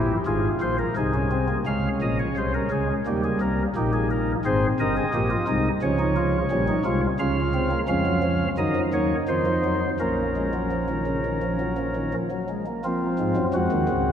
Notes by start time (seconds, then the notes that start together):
Already playing: A#1 A#2 E4 G4
0.26 G#1 G#2 F4 G#4
0.61 A#1 A#2 F4 C5
0.79 A#4
0.96 C2 C3 D#4 G#4
1.14 C#4
1.31 C4
1.48 A#3
1.66 C#2 C#3 G#3 C#4 F5
2.02 A#1 A#2 D#5
2.19 C#5
2.37 C2 C3 C5
2.54 A#4
2.71 C#2 C#3 G#4
3.06 D#2 D#3 G3 A#3 G4
3.24 G#4
3.41 C2 C3 A#4
3.76 A#1 A#2 A#3 D#4 G4
3.93 G#4
4.11 A#4
4.45 G#1 G#2 C4 G#4 C5
4.80 G1 G2 A#4 D#5
4.97 G#4
5.14 A#1 A#2 A#3 G4
5.30 F4
5.48 C2 C3 G#3 D#4
5.82 C#2 C#3 F3 C#4 C#5
5.99 D#4
6.16 F4
6.51 A#1 A#2 G3 C#4
6.68 D#4
6.85 C2 C3 G#3 F4
7.20 C#2 C#3 C#4 F4 F5
7.54 C4
7.71 A#3
7.88 F2 F3 G#3 C#4 F5
8.06 F#3
8.23 F3
8.58 F#2 D#3 F#3 D#4 D#5
8.76 F3
8.94 D#2 D#3 F#3 C#5
9.28 F2 D#3 F3 C5
9.46 F3
9.64 F#3
10.00 A#1 A#2 A#3 C#4 A#4
10.36 G#3
10.54 F#3
10.72 F3
10.89 D#3
11.07 C#3
11.25 D#3
11.43 F3
11.60 F#3
11.78 F3
11.95 D#3
12.13 F3
12.31 F#3
12.49 G#3
12.66 A#3
12.84 F3 A#3 C4 F4
13.19 G#2 G#3
13.36 F#2 F#3
13.54 F2 F3 G#3 F#4
13.71 D#2 D#3
13.89 C#2 C#3